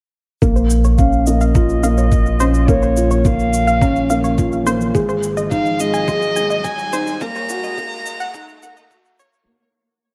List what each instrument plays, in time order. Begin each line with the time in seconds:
0.42 sub bass A#1, felt piano A#3, synth arpeggio sound A#4, kick, riser, shaker
0.56 synth arpeggio sound C5, shaker
0.70 shaker
0.84 synth arpeggio sound C#5, shaker
0.98 felt piano C#4, violin F5, kick, shaker
1.13 shaker
1.27 felt piano A#3, violin D#5, shaker
1.41 synth arpeggio sound F5, shaker
1.55 felt piano F4, synth arpeggio sound A#5, kick, shaker
1.69 shaker
1.83 felt piano A#3, synth arpeggio sound F5, shaker
1.98 synth arpeggio sound C#5, shaker
2.12 kick, shaker
2.26 shaker
2.40 felt piano C#4, synth arpeggio sound C5, shaker
2.54 shaker
2.68 felt piano A#3, synth arpeggio sound A#4, violin C#5, kick, shaker
2.82 synth arpeggio sound C5, shaker
2.97 felt piano F4, shaker
3.11 synth arpeggio sound C#5, shaker
3.25 felt piano A#3, violin F5, kick, shaker
3.39 shaker
3.53 shaker
3.67 synth arpeggio sound F5, shaker
3.82 felt piano C#4, synth arpeggio sound A#5, kick, shaker
3.96 shaker
4.10 felt piano A#3, synth arpeggio sound F5, shaker
4.24 synth arpeggio sound C#5, shaker
4.38 felt piano F4, kick, shaker
4.52 shaker
4.66 felt piano A#3, synth arpeggio sound C5, shaker
4.81 shaker
4.95 sub bass G#1, felt piano G#3, synth arpeggio sound G#4, kick, shaker
5.09 synth arpeggio sound C5, shaker
5.23 shaker
5.37 synth arpeggio sound D#5, shaker
5.51 felt piano D#4, violin F5, kick, shaker
5.66 shaker
5.80 felt piano G#3, violin D#5, shaker
5.94 synth arpeggio sound G#5, shaker
6.08 felt piano G#4, synth arpeggio sound C6, kick, shaker
6.22 shaker
6.36 felt piano G#3, synth arpeggio sound G#5, shaker
6.50 synth arpeggio sound D#5, shaker
6.65 violin G#5, kick, shaker
6.79 shaker
6.93 felt piano D#4, synth arpeggio sound C5, shaker
7.07 shaker
7.21 sub bass D#1, felt piano A#3, synth arpeggio sound A#4, violin A#5, kick, shaker
7.35 synth arpeggio sound C#5, shaker
7.49 felt piano F#4, shaker
7.64 synth arpeggio sound D#5, shaker
7.78 felt piano A#3, kick, shaker
7.92 shaker
8.06 shaker
8.20 synth arpeggio sound F#5, shaker
8.34 felt piano D#4, synth arpeggio sound A#5, kick, shaker
8.49 shaker
8.63 felt piano A#3, synth arpeggio sound F#5, shaker
8.77 synth arpeggio sound D#5, shaker
8.91 felt piano F#4, kick, shaker
9.05 shaker
9.19 felt piano A#3, synth arpeggio sound C#5, shaker
9.33 shaker